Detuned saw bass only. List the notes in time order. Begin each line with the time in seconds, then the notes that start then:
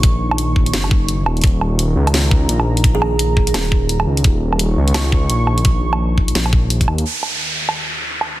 Already playing: A#1
0.73 F#1
1.26 D#1
1.44 D#1
1.96 C#2
2.49 A#1
3.54 D#1
4.07 C#2
4.25 D#1
4.77 C#2
5.30 A#1
6.35 A#1
6.88 D#2